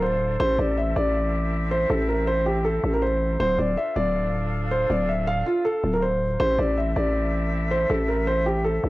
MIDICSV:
0, 0, Header, 1, 4, 480
1, 0, Start_track
1, 0, Tempo, 375000
1, 511, Time_signature, 4, 2, 24, 8
1, 11379, End_track
2, 0, Start_track
2, 0, Title_t, "Grand piano"
2, 0, Program_c, 0, 0
2, 28, Note_on_c, 0, 72, 84
2, 481, Note_off_c, 0, 72, 0
2, 510, Note_on_c, 0, 72, 111
2, 725, Note_off_c, 0, 72, 0
2, 748, Note_on_c, 0, 74, 84
2, 964, Note_off_c, 0, 74, 0
2, 990, Note_on_c, 0, 76, 78
2, 1205, Note_off_c, 0, 76, 0
2, 1230, Note_on_c, 0, 74, 86
2, 2139, Note_off_c, 0, 74, 0
2, 2191, Note_on_c, 0, 72, 84
2, 2406, Note_off_c, 0, 72, 0
2, 2428, Note_on_c, 0, 69, 89
2, 2644, Note_off_c, 0, 69, 0
2, 2668, Note_on_c, 0, 70, 79
2, 2884, Note_off_c, 0, 70, 0
2, 2909, Note_on_c, 0, 72, 91
2, 3125, Note_off_c, 0, 72, 0
2, 3150, Note_on_c, 0, 67, 87
2, 3365, Note_off_c, 0, 67, 0
2, 3387, Note_on_c, 0, 69, 88
2, 3734, Note_off_c, 0, 69, 0
2, 3758, Note_on_c, 0, 70, 86
2, 3859, Note_off_c, 0, 70, 0
2, 3867, Note_on_c, 0, 72, 85
2, 4320, Note_off_c, 0, 72, 0
2, 4353, Note_on_c, 0, 72, 105
2, 4567, Note_off_c, 0, 72, 0
2, 4591, Note_on_c, 0, 74, 78
2, 4806, Note_off_c, 0, 74, 0
2, 4830, Note_on_c, 0, 76, 76
2, 5045, Note_off_c, 0, 76, 0
2, 5071, Note_on_c, 0, 74, 90
2, 5980, Note_off_c, 0, 74, 0
2, 6033, Note_on_c, 0, 72, 86
2, 6247, Note_off_c, 0, 72, 0
2, 6273, Note_on_c, 0, 74, 75
2, 6487, Note_off_c, 0, 74, 0
2, 6511, Note_on_c, 0, 76, 71
2, 6726, Note_off_c, 0, 76, 0
2, 6750, Note_on_c, 0, 77, 95
2, 6965, Note_off_c, 0, 77, 0
2, 6993, Note_on_c, 0, 65, 90
2, 7207, Note_off_c, 0, 65, 0
2, 7231, Note_on_c, 0, 69, 86
2, 7576, Note_off_c, 0, 69, 0
2, 7597, Note_on_c, 0, 70, 83
2, 7698, Note_off_c, 0, 70, 0
2, 7709, Note_on_c, 0, 72, 84
2, 8161, Note_off_c, 0, 72, 0
2, 8189, Note_on_c, 0, 72, 113
2, 8405, Note_off_c, 0, 72, 0
2, 8428, Note_on_c, 0, 74, 85
2, 8644, Note_off_c, 0, 74, 0
2, 8671, Note_on_c, 0, 76, 76
2, 8886, Note_off_c, 0, 76, 0
2, 8910, Note_on_c, 0, 74, 83
2, 9820, Note_off_c, 0, 74, 0
2, 9870, Note_on_c, 0, 72, 84
2, 10085, Note_off_c, 0, 72, 0
2, 10107, Note_on_c, 0, 69, 90
2, 10324, Note_off_c, 0, 69, 0
2, 10347, Note_on_c, 0, 70, 81
2, 10563, Note_off_c, 0, 70, 0
2, 10588, Note_on_c, 0, 72, 93
2, 10804, Note_off_c, 0, 72, 0
2, 10829, Note_on_c, 0, 67, 87
2, 11045, Note_off_c, 0, 67, 0
2, 11066, Note_on_c, 0, 69, 88
2, 11379, Note_off_c, 0, 69, 0
2, 11379, End_track
3, 0, Start_track
3, 0, Title_t, "Flute section"
3, 0, Program_c, 1, 73
3, 0, Note_on_c, 1, 62, 86
3, 0, Note_on_c, 1, 65, 80
3, 0, Note_on_c, 1, 69, 80
3, 0, Note_on_c, 1, 77, 92
3, 472, Note_off_c, 1, 65, 0
3, 472, Note_off_c, 1, 77, 0
3, 473, Note_off_c, 1, 62, 0
3, 511, Note_on_c, 1, 60, 87
3, 511, Note_on_c, 1, 64, 83
3, 511, Note_on_c, 1, 76, 99
3, 4300, Note_off_c, 1, 69, 0
3, 4313, Note_off_c, 1, 60, 0
3, 4313, Note_off_c, 1, 64, 0
3, 4313, Note_off_c, 1, 76, 0
3, 4350, Note_on_c, 1, 62, 85
3, 4350, Note_on_c, 1, 65, 77
3, 4350, Note_on_c, 1, 69, 78
3, 4350, Note_on_c, 1, 77, 96
3, 7795, Note_off_c, 1, 62, 0
3, 7834, Note_off_c, 1, 65, 0
3, 7847, Note_off_c, 1, 69, 0
3, 7889, Note_off_c, 1, 77, 0
3, 8190, Note_on_c, 1, 60, 88
3, 8190, Note_on_c, 1, 64, 81
3, 8191, Note_on_c, 1, 69, 79
3, 8191, Note_on_c, 1, 76, 98
3, 11379, Note_off_c, 1, 60, 0
3, 11379, Note_off_c, 1, 64, 0
3, 11379, Note_off_c, 1, 69, 0
3, 11379, Note_off_c, 1, 76, 0
3, 11379, End_track
4, 0, Start_track
4, 0, Title_t, "808-style bass"
4, 0, Program_c, 2, 38
4, 0, Note_on_c, 2, 26, 102
4, 482, Note_off_c, 2, 26, 0
4, 511, Note_on_c, 2, 33, 111
4, 741, Note_off_c, 2, 33, 0
4, 751, Note_on_c, 2, 33, 108
4, 1212, Note_off_c, 2, 33, 0
4, 1231, Note_on_c, 2, 33, 104
4, 2383, Note_off_c, 2, 33, 0
4, 2430, Note_on_c, 2, 33, 110
4, 3583, Note_off_c, 2, 33, 0
4, 3631, Note_on_c, 2, 33, 110
4, 4322, Note_off_c, 2, 33, 0
4, 4351, Note_on_c, 2, 26, 107
4, 4581, Note_off_c, 2, 26, 0
4, 4590, Note_on_c, 2, 26, 111
4, 4821, Note_off_c, 2, 26, 0
4, 5070, Note_on_c, 2, 26, 106
4, 6223, Note_off_c, 2, 26, 0
4, 6271, Note_on_c, 2, 26, 108
4, 6962, Note_off_c, 2, 26, 0
4, 7471, Note_on_c, 2, 26, 108
4, 8162, Note_off_c, 2, 26, 0
4, 8191, Note_on_c, 2, 33, 113
4, 8421, Note_off_c, 2, 33, 0
4, 8431, Note_on_c, 2, 33, 107
4, 8892, Note_off_c, 2, 33, 0
4, 8911, Note_on_c, 2, 33, 109
4, 10063, Note_off_c, 2, 33, 0
4, 10111, Note_on_c, 2, 33, 113
4, 11263, Note_off_c, 2, 33, 0
4, 11311, Note_on_c, 2, 33, 104
4, 11379, Note_off_c, 2, 33, 0
4, 11379, End_track
0, 0, End_of_file